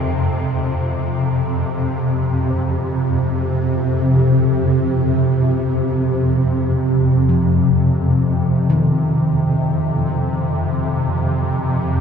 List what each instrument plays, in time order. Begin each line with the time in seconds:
Already playing: synth drone F2 C3, cello section F2 D#3 G#3 C4, singing bowl C5
2.50 synth drone F2 C3, singing bowl C5
7.29 kettle gongs F3
8.70 kettle gongs D#3